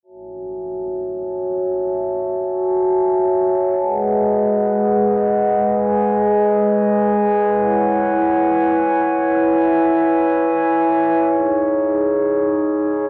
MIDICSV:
0, 0, Header, 1, 2, 480
1, 0, Start_track
1, 0, Tempo, 500000
1, 12575, End_track
2, 0, Start_track
2, 0, Title_t, "Glass harmonica"
2, 0, Program_c, 0, 92
2, 26, Note_on_c, 0, 76, 64
2, 26, Note_on_c, 0, 80, 59
2, 26, Note_on_c, 0, 81, 75
2, 27, Note_on_c, 0, 66, 64
2, 27, Note_on_c, 0, 73, 62
2, 3592, Note_off_c, 0, 66, 0
2, 3592, Note_off_c, 0, 73, 0
2, 3592, Note_off_c, 0, 76, 0
2, 3592, Note_off_c, 0, 80, 0
2, 3592, Note_off_c, 0, 81, 0
2, 3627, Note_on_c, 0, 71, 62
2, 3627, Note_on_c, 0, 75, 64
2, 3628, Note_on_c, 0, 56, 66
2, 3628, Note_on_c, 0, 68, 62
2, 3628, Note_on_c, 0, 78, 75
2, 5411, Note_off_c, 0, 78, 0
2, 5429, Note_on_c, 0, 80, 75
2, 7192, Note_off_c, 0, 75, 0
2, 7193, Note_off_c, 0, 56, 0
2, 7193, Note_off_c, 0, 68, 0
2, 7230, Note_on_c, 0, 64, 66
2, 7230, Note_on_c, 0, 73, 62
2, 7230, Note_on_c, 0, 78, 61
2, 9012, Note_off_c, 0, 78, 0
2, 9028, Note_on_c, 0, 76, 64
2, 10790, Note_off_c, 0, 71, 0
2, 10791, Note_off_c, 0, 80, 0
2, 10794, Note_off_c, 0, 64, 0
2, 10811, Note_off_c, 0, 76, 0
2, 10827, Note_on_c, 0, 63, 68
2, 10828, Note_on_c, 0, 68, 63
2, 12575, Note_off_c, 0, 63, 0
2, 12575, Note_off_c, 0, 68, 0
2, 12575, Note_off_c, 0, 73, 0
2, 12575, End_track
0, 0, End_of_file